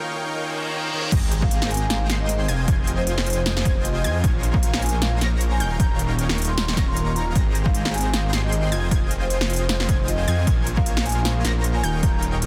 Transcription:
Already playing: D#4 F4 A#4 C5 C#5 F5 G5
0.34 reverse cymbal
0.93 D#4 A#4 C#5 F5 G5
1.12 G#1 G#3 G4 G#4 C5 G5 A#5 A#6, kick, closed hi-hat, crash, impact
1.23 G5
1.32 G4, closed hi-hat
1.42 C5 F5, kick
1.51 G4 F5, closed hi-hat
1.62 A#4, snare
1.71 G4 G#5, closed hi-hat
1.74 closed hi-hat
1.77 closed hi-hat
1.81 G5
1.90 G4 F5, snare, closed hi-hat
2.01 C5
2.10 G#1 G#3 G4 G#4 C5 G5 C6 C7, snare, closed hi-hat
2.20 A#4 D#5
2.29 G4, closed hi-hat
2.40 G5
2.48 F1 F4 C5 D#5 G5 G#5 G#6, closed hi-hat
2.59 C5
2.68 F1 F4 C5 D#5 G5 G#5 G#6, kick, closed hi-hat
2.79 G#4
2.87 F4, closed hi-hat
2.98 C5 F5
3.07 F4, closed hi-hat
3.18 C5, snare
3.26 F4 C5, closed hi-hat
3.30 closed hi-hat
3.33 closed hi-hat
3.37 G#4
3.46 F4, snare, closed hi-hat
3.57 F5, snare
3.65 F1 F4 C5 D#5 G5 G#5 G#6, kick, closed hi-hat
3.76 C5
3.85 F4 D#5, closed hi-hat
3.96 G#4
4.04 F2 F4 C5 D#5 G5 G#5 G#6, closed hi-hat
4.15 F5
4.24 A#1 A#3 F4 A#4 C5 C#5 G#5 G#6, kick, closed hi-hat
4.35 C5
4.43 F4, closed hi-hat
4.54 A#4 F5, kick
4.63 F4 F5, closed hi-hat
4.74 F5, snare
4.82 F4 G#5, closed hi-hat
4.86 closed hi-hat
4.89 closed hi-hat
4.93 C5
5.02 F4 F5, snare, closed hi-hat
5.13 A#4
5.21 A#1 A#3 F4 A#4 C5 C#5 A#5 A#6, snare, closed hi-hat
5.32 F5
5.41 F4, closed hi-hat
5.51 C5 G#5
5.60 D#1 D#4 F4 A#4 C#5 F5 G5 G6, closed hi-hat
5.71 A#4
5.80 D#1 D#4 A#4 C#5 F5 G5 A#5 G6, kick, closed hi-hat
5.90 F5 A#5
5.99 F4, closed hi-hat
6.10 C#5
6.19 F4, closed hi-hat
6.29 A#4, snare
6.38 F4, closed hi-hat
6.42 closed hi-hat
6.45 closed hi-hat
6.49 F5 C6
6.58 F4, snare, closed hi-hat
6.68 C#5, snare
6.77 D#1 D#4 G4 A#4 C#5 F5 A#5 A#6, kick, snare, closed hi-hat
6.88 F5 C6
6.97 A#4, closed hi-hat
7.07 C#5
7.16 F4 A#5, closed hi-hat
7.27 F4
7.36 G#1 G#3 G4 G#4 C5 G5 A#5 A#6, kick, closed hi-hat
7.46 G5
7.55 G4, closed hi-hat
7.66 C5 F5, kick
7.75 G4 F5, closed hi-hat
7.85 A#4, snare
7.94 G4 G#5, closed hi-hat
7.98 closed hi-hat
8.01 closed hi-hat
8.05 G5
8.13 G4 F5, snare, closed hi-hat
8.24 C5
8.33 G#1 G#3 G4 G#4 C5 G5 C6 C7, snare, closed hi-hat
8.44 A#4 D#5
8.52 G4, closed hi-hat
8.63 G5
8.72 F1 F4 C5 D#5 G5 G#5 G#6, closed hi-hat
8.83 C5
8.91 F1 F4 C5 D#5 G5 G#5 G#6, kick, closed hi-hat
9.02 G#4
9.11 F4, closed hi-hat
9.22 C5 F5
9.30 F4 C5, closed hi-hat
9.41 C5, snare
9.50 F4 C5, closed hi-hat
9.53 closed hi-hat
9.56 closed hi-hat
9.61 G#4
9.69 F4, snare, closed hi-hat
9.80 F5, snare
9.89 F1 F4 C5 D#5 G5 G#5 G#6, kick, closed hi-hat
9.99 C5
10.08 F4 D#5, closed hi-hat
10.19 G#4
10.28 F2 F4 C5 D#5 G5 G#5 G#6, closed hi-hat
10.38 F5
10.47 A#1 A#3 F4 A#4 C5 C#5 G#5 G#6, kick, closed hi-hat
10.58 C5
10.67 F4, closed hi-hat
10.77 A#4 F5, kick
10.86 F4 F5, closed hi-hat
10.97 F5, snare
11.06 F4 G#5, closed hi-hat
11.09 closed hi-hat
11.12 closed hi-hat
11.16 C5
11.25 F4 F5, snare, closed hi-hat
11.36 A#4
11.45 A#1 A#3 F4 A#4 C5 C#5 A#5 A#6, snare, closed hi-hat
11.55 F5
11.64 F4, closed hi-hat
11.75 C5 G#5
11.83 D#1 D#4 F4 A#4 C#5 F5 G5 G6, closed hi-hat
11.94 A#4
12.03 D#1 D#4 A#4 C#5 F5 G5 G6, kick, closed hi-hat
12.14 F5 A#5
12.22 F4, closed hi-hat
12.33 C#5
12.42 F4, closed hi-hat

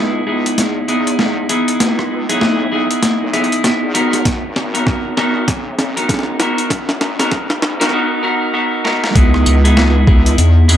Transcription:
Already playing: C#2 B3 D#4 E4 G#4
0.27 B3 D#4 E4 G#4
0.46 closed hi-hat
0.58 E2, snare, closed hi-hat
0.88 B3 D#4 E4 G#4, closed hi-hat
1.07 closed hi-hat
1.19 snare
1.49 B3 D#4 E4 G#4, closed hi-hat
1.68 closed hi-hat
1.80 C#2, snare, closed hi-hat
1.99 cross-stick
2.29 B1 B3 D#4 E4 G#4, closed hi-hat
2.41 snare
2.72 B3 D#4 E4 G#4
2.91 closed hi-hat
3.03 snare, closed hi-hat
3.22 B1
3.33 B3 D#4 E4 G#4, cross-stick, closed hi-hat
3.44 closed hi-hat
3.52 closed hi-hat
3.54 closed hi-hat
3.64 snare, closed hi-hat
3.83 E2
3.94 B3 D#4 F#4 A#4, closed hi-hat
4.13 cross-stick, closed hi-hat
4.25 G#1, kick, snare, closed hi-hat
4.56 G#1, snare
4.74 B3 D#4 F#4 A#4, closed hi-hat
4.87 kick, snare
5.17 B3 D#4 F#4 A#4, snare
5.48 B1, kick, snare, closed hi-hat
5.79 snare, closed hi-hat
5.96 B3 D#4 F#4 A#4, closed hi-hat
6.09 kick, snare, closed hi-hat
6.14 snare
6.19 snare
6.23 snare
6.39 B3 D#4 F#4 A#4, snare, closed hi-hat
6.58 closed hi-hat
6.70 G#1, kick, snare, closed hi-hat
6.89 snare
7.01 snare
7.19 F#1 B3 D#4 F#4 A#4, snare, closed hi-hat
7.32 kick, snare
7.50 snare
7.62 snare
7.80 B1 B3 D#4 F#4 A#4, snare, closed hi-hat
7.83 snare
7.89 B3 D#4, snare
7.93 F#4 A#4
8.23 B3 D#4 F#4 A#4
8.53 B3 D#4 F#4 A#4
8.84 B3 D#4 F#4 A#4, snare
9.04 snare
9.15 C#2 B3 D#4 E4 G#4, kick, closed hi-hat
9.34 cross-stick
9.46 C#2, tambourine
9.64 B3 D#4 E4 G#4, closed hi-hat
9.77 snare
10.07 B3 D#4 E4 G#4, kick
10.26 closed hi-hat
10.38 E2, closed hi-hat
10.68 B3 D#4 E4 G#4, closed hi-hat, tambourine

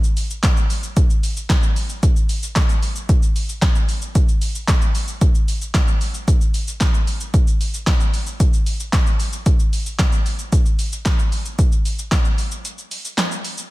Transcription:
0.04 shaker
0.17 open hi-hat, shaker
0.30 shaker
0.43 kick, snare, clap, closed hi-hat, shaker
0.57 shaker
0.70 open hi-hat, shaker
0.83 shaker
0.97 kick, closed hi-hat, shaker
1.10 shaker
1.23 open hi-hat, shaker
1.37 shaker
1.50 kick, snare, clap, closed hi-hat, shaker
1.63 shaker
1.76 open hi-hat, shaker
1.89 shaker
2.03 kick, closed hi-hat, shaker
2.16 shaker
2.29 open hi-hat, shaker
2.43 shaker
2.56 kick, snare, clap, closed hi-hat, shaker
2.69 shaker
2.83 open hi-hat, shaker
2.96 shaker
3.09 kick, closed hi-hat, shaker
3.23 shaker
3.36 open hi-hat, shaker
3.49 shaker
3.62 kick, snare, clap, closed hi-hat, shaker
3.75 shaker
3.89 open hi-hat, shaker
4.02 shaker
4.15 kick, closed hi-hat, shaker
4.29 shaker
4.42 open hi-hat, shaker
4.55 shaker
4.68 kick, snare, clap, closed hi-hat, shaker
4.82 shaker
4.95 open hi-hat, shaker
5.08 shaker
5.21 kick, closed hi-hat, shaker
5.35 shaker
5.48 open hi-hat, shaker
5.61 shaker
5.74 kick, snare, clap, closed hi-hat, shaker
5.88 shaker
6.01 open hi-hat, shaker
6.14 shaker
6.28 kick, closed hi-hat, shaker
6.41 shaker
6.54 open hi-hat, shaker
6.68 shaker
6.80 kick, snare, clap, closed hi-hat, shaker
6.94 shaker
7.07 open hi-hat, shaker
7.20 shaker
7.34 kick, closed hi-hat, shaker
7.47 shaker
7.61 open hi-hat, shaker
7.74 shaker
7.87 kick, snare, clap, closed hi-hat, shaker
8.00 shaker
8.14 open hi-hat, shaker
8.27 shaker
8.40 kick, closed hi-hat, shaker
8.53 shaker
8.66 open hi-hat, shaker
8.80 shaker
8.93 kick, snare, clap, closed hi-hat, shaker
9.07 shaker
9.20 open hi-hat, shaker
9.33 shaker
9.46 kick, closed hi-hat, shaker
9.60 shaker
9.73 open hi-hat, shaker
9.86 shaker
9.99 kick, snare, clap, closed hi-hat, shaker
10.12 shaker
10.26 open hi-hat, shaker
10.39 shaker
10.52 kick, closed hi-hat, shaker
10.66 shaker
10.79 open hi-hat, shaker
10.93 shaker
11.05 kick, snare, clap, closed hi-hat, shaker
11.19 shaker
11.32 open hi-hat, shaker
11.45 shaker
11.59 kick, closed hi-hat, shaker
11.72 shaker
11.85 open hi-hat, shaker
11.99 shaker
12.12 kick, snare, clap, closed hi-hat, shaker
12.25 shaker
12.38 open hi-hat, shaker
12.51 shaker
12.65 closed hi-hat, shaker
12.78 shaker
12.91 open hi-hat, shaker
13.05 shaker
13.18 snare, clap, closed hi-hat, shaker
13.31 shaker
13.45 open hi-hat, shaker
13.58 shaker

